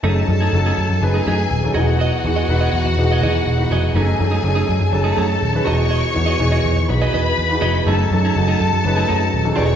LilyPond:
<<
  \new Staff \with { instrumentName = "String section" } { \time 4/4 \key fis \dorian \tempo 4 = 123 <a' a''>2 <gis' gis''>4. <fis' fis''>8~ | <fis' fis''>1 | <gis' gis''>2 <a' a''>4. <cis'' cis'''>8~ | <cis'' cis'''>2 <b' b''>2 |
<a' a''>2.~ <a' a''>8 <cis'' cis'''>8 | }
  \new Staff \with { instrumentName = "Clean electric guitar" } { \time 4/4 \key fis \dorian <a dis' gis'>16 r8 <a dis' gis'>16 r16 <a dis' gis'>16 r8. <a dis' gis'>16 <a dis' gis'>16 r8. <fis' gis' dis''>16 r16 | <fis' gis' dis''>16 r8 <fis' gis' dis''>16 r16 <fis' gis' dis''>16 r8. <fis' gis' dis''>16 <fis' gis' dis''>16 r8. <fis' gis' dis''>16 r16 | <a dis' gis'>16 r8 <a dis' gis'>16 r16 <a dis' gis'>16 r8. <a dis' gis'>16 <a dis' gis'>16 r8. <fis' gis' dis''>16 r16 | <fis' gis' dis''>16 r8 <fis' gis' dis''>16 r16 <fis' gis' dis''>16 r8. <fis' gis' dis''>16 <fis' gis' dis''>16 r8. <fis' gis' dis''>16 r16 |
<a dis' gis'>16 r8 <a dis' gis'>16 r16 <a dis' gis'>16 r8. <a dis' gis'>16 <a dis' gis'>16 r8. <fis' gis' dis''>8 | }
  \new Staff \with { instrumentName = "Grand piano" } { \time 4/4 \key fis \dorian <fis cis' dis' gis' a'>8 <fis cis' dis' gis' a'>8 <fis cis' dis' fis' a'>4 <fis cis' dis' gis' b'>8 <fis cis' dis' gis' b'>8. <fis cis' dis' gis' a'>16 <e b dis' fis' gis'>8~ | <e b dis' fis' gis'>8 <e b dis' fis' gis'>8 <e b dis' fis' b'>4 <e b dis' fis' gis'>8 <e b dis' fis' gis'>8. <e b dis' fis' b'>8. | <fis cis' dis' gis' a'>8 <fis cis' dis' gis' a'>8 <fis cis' dis' gis' a'>4 <fis cis' dis' gis' a'>8 <fis cis' dis' fis' a'>8. <fis cis' dis' gis' b'>16 <e b dis' fis' gis'>8~ | <e b dis' fis' gis'>8 <e b dis' fis' gis'>8 <e b dis' fis' gis'>4 <e b dis' fis' gis'>8 <e b dis' fis' b'>8. <e b dis' fis' gis'>8. |
<fis cis' dis' gis' a'>8 <fis cis' dis' gis' a'>8 <fis cis' dis' fis' a'>4 <fis cis' dis' gis' b'>8 <fis cis' dis' fis' a'>8. <fis cis' dis' gis' a'>16 <e b dis' fis' gis'>8 | }
  \new Staff \with { instrumentName = "Picked electric bass" } { \clef bass \time 4/4 \key fis \dorian fis,,8 fis,8 fis,,8 fis,16 fis,16 fis,,8 fis,8 dis,,8 e,,8~ | e,,8 e,8 e,,8 e,16 e,16 e,,8 e,8 e,,8 eis,,8 | fis,,8 fis,8 fis,,8 fis,16 fis,16 fis,,8 fis,8 dis,,8 e,,8~ | e,,8 e,8 e,,8 e,16 e,16 b,,8 e,8 e,8 eis,,8 |
fis,,8 fis,8 fis,,8 fis,16 fis,16 fis,,8 fis,8 dis,,8 e,,8 | }
>>